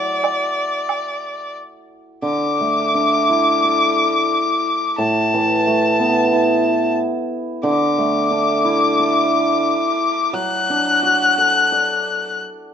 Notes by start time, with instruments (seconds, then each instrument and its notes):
Already playing: hammered dulcimer F#3, erhu D5
0.24 high woodblock, low woodblock
0.89 high woodblock
2.22 hammered dulcimer D3, erhu D6
2.61 hammered dulcimer A3
2.95 hammered dulcimer D4
3.29 hammered dulcimer E4
3.64 hammered dulcimer A4
4.98 hammered dulcimer A2, erhu A5
5.34 hammered dulcimer E3
5.67 hammered dulcimer A3
5.99 hammered dulcimer B3
6.33 hammered dulcimer E4
7.63 hammered dulcimer D3, erhu D6
7.98 hammered dulcimer A3
8.31 hammered dulcimer D4
8.65 hammered dulcimer E4
9.00 hammered dulcimer A4
10.33 hammered dulcimer F#3, erhu F#6
10.70 hammered dulcimer D4
11.03 hammered dulcimer F#4
11.38 hammered dulcimer A4
11.72 hammered dulcimer D5